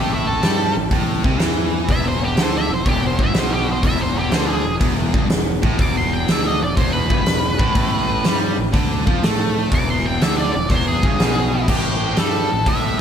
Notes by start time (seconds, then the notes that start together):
Already playing: A1 A2 G4
0.14 E4
0.27 A4
0.42 G2 G3, snare, open hi-hat
0.76 A1 A2
0.91 A1 A2, kick, open hi-hat
1.24 C2 C3, kick
1.39 E2 E3, snare, open hi-hat
1.89 E1 E2 E5, kick, open hi-hat
2.08 C5
2.25 G4
2.36 D2 D3, snare, open hi-hat
2.43 C5
2.57 E5
2.69 E1 E2
2.74 C5
2.86 E1 E2 G4, kick, open hi-hat
3.06 C5
3.19 G1 G2, kick
3.23 E5
3.34 B1 B2, snare, open hi-hat
3.39 C5
3.53 G4
3.72 C5
3.83 E1 E2 E5, kick, open hi-hat
4.01 C5
4.16 G4
4.31 D2 D3 C5, snare, open hi-hat
4.47 G#4
4.66 E1 E2
4.80 E1 E2, kick, open hi-hat
5.13 G1 G2, kick
5.30 E1 E2, snare, open hi-hat
5.62 A1 A2, kick
5.79 E1 E2 D6, kick, open hi-hat
5.97 C6
6.13 G5
6.28 D2 D3 E5, snare, open hi-hat
6.47 D#5
6.61 E1 E2 D5
6.76 E1 E2 C5, kick, open hi-hat
6.93 B4
7.10 G1 G2, kick
7.26 E1 E2, snare, open hi-hat
7.59 A1 A2, kick
7.74 A1 A2, kick, open hi-hat
8.24 G2 G3, snare, open hi-hat
8.58 A1 A2
8.72 D2 D3, kick, open hi-hat
9.06 F2 F3, kick
9.22 A2 A3, snare, open hi-hat
9.70 E1 E2, kick, open hi-hat
9.75 D6
9.90 C6
10.06 G5
10.21 D2 D3 E5, snare, open hi-hat
10.37 D5
10.52 E1 E2 D5
10.69 E1 E2 C5, kick, open hi-hat
10.88 G#4
11.03 G1 G2, kick
11.19 B1 B2, snare, open hi-hat
11.68 A1 A2 G4, kick, crash
12.16 G2 G3 A4, snare, open hi-hat
12.50 A1 A2
12.66 A1 A2 E5, kick, open hi-hat